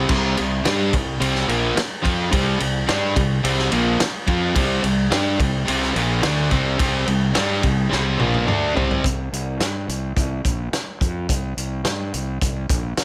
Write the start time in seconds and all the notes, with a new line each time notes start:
0.09 C2 C3 G3 C4, kick, crash
0.37 C2 C3 G3, ride
0.65 G2 G3 D4 G4, snare, ride
0.93 C2 C3 G3, kick, ride
1.20 C2 C3 G3 C4, ride
1.35 snare
1.48 A#1 A#2 F3 A#3, ride
1.76 muted overdriven electric guitar stroke, muted distorted electric guitar stroke, muted fingered electric bass stroke, snare, ride
2.02 F2 F3 C4 F4, kick, ride
2.31 C2 C3 G3 C4, kick, ride
2.60 C2 C3 G3, ride
2.88 G2 G3 D4 G4, snare, ride
3.16 C2 C3 G3, kick, ride
3.43 C2 C3 G3 C4, ride
3.59 snare
3.72 A#1 A#2 F3 A#3, ride
3.99 muted distorted electric guitar stroke, muted overdriven electric guitar stroke, snare, ride
4.27 F2 F3 C4 F4, kick, ride
4.55 C2 C3 G3 C4, kick, ride
4.83 C2 C3 G3, ride
5.11 G2 G3 D4 G4, snare, ride
5.39 C2 C3 G3, kick, ride
5.68 C2 C3 G3 C4, ride
5.82 snare
5.95 A#1 A#2 F3 A#3, ride
6.22 D2 D3 A3 D4, snare, ride
6.51 C2 C3 G3 C4, kick, ride
6.78 C3 G3 C4, kick, ride
7.07 C2 C3 G3, ride
7.35 G2 G3 D4 G4, snare, ride
7.62 C2 C3 G3, kick, ride
7.89 C2 C3 G3 C4, snare
8.20 A#1 A#2 F3 A#3, high tom
8.34 high tom
8.47 D2 D3 A3 D4, mid tom
8.75 C2 C3 G3 C4, floor tom
8.91 floor tom
9.04 C2, kick, closed hi-hat
9.33 C2, closed hi-hat
9.60 G2, snare, closed hi-hat
9.88 C2, closed hi-hat
10.16 C2, kick, closed hi-hat
10.45 A#1, kick, closed hi-hat
10.73 snare, closed hi-hat
11.01 F2, kick, closed hi-hat
11.29 C2, kick, closed hi-hat
11.57 C2, closed hi-hat
11.84 G2, snare, closed hi-hat
12.14 C2, closed hi-hat
12.41 C2, kick, closed hi-hat
12.69 A#1, kick, closed hi-hat
12.97 snare, closed hi-hat